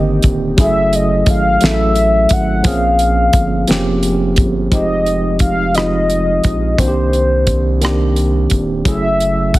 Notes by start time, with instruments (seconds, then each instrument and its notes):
Already playing: analog synth bass G1, tine electric piano D3 D#3 A#3 C4 D4 G4, soft synth lead D#5
0.23 analog synth bass D#1, kick, closed hi-hat
0.57 analog synth bass F#1, tine electric piano F#3 G#3 C#4 E4, soft synth lead E5, kick, closed hi-hat
0.61 tine electric piano A3 G#4
0.93 soft synth lead D#5, closed hi-hat
1.26 analog synth bass G#1, kick, closed hi-hat
1.30 soft synth lead F5
1.61 analog synth bass A1, tine electric piano F#3 A3 C#4 E4 A4, snare, closed hi-hat
1.66 soft synth lead E5
1.96 closed hi-hat
2.29 analog synth bass G#1, soft synth lead F#5, kick, closed hi-hat
2.63 analog synth bass A#1, tine electric piano F3 A#3 C4 C#4 G#4, kick, closed hi-hat
2.67 soft synth lead F5
2.99 closed hi-hat
3.33 analog synth bass G1, kick, closed hi-hat
3.67 analog synth bass F1, tine electric piano F3 A#3 C4 C#4 G4, snare, closed hi-hat
4.03 closed hi-hat
4.36 analog synth bass G1, kick, closed hi-hat
4.71 analog synth bass F1, tine electric piano F3 G#3 C4 D#4, soft synth lead D#5, kick, closed hi-hat
4.75 tine electric piano G4
5.06 closed hi-hat
5.39 soft synth lead F5, kick, closed hi-hat
5.74 tine electric piano F3 G#3 C4 D#4 F4, soft synth lead D#5, cross-stick, closed hi-hat
6.10 closed hi-hat
6.44 analog synth bass A#1, kick, closed hi-hat
6.78 analog synth bass C2, tine electric piano D#3 A#3 C4 D4 F#4, soft synth lead C5, kick, closed hi-hat
6.88 tine electric piano G4
7.13 closed hi-hat
7.47 kick, closed hi-hat
7.81 tine electric piano D#3 A#3 C4 D4 G4, closed hi-hat
7.85 cross-stick
8.16 closed hi-hat
8.50 analog synth bass D#1, kick, closed hi-hat
8.84 analog synth bass F#1, tine electric piano F#3 A3 C#4 E4 G#4, soft synth lead E5, kick, closed hi-hat
9.20 closed hi-hat
9.54 soft synth lead F#5, kick, closed hi-hat